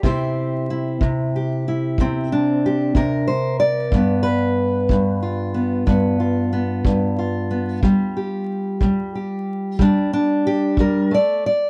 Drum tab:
BD |o--o--o--o--|o--o--o--o--|o--o--o--o--|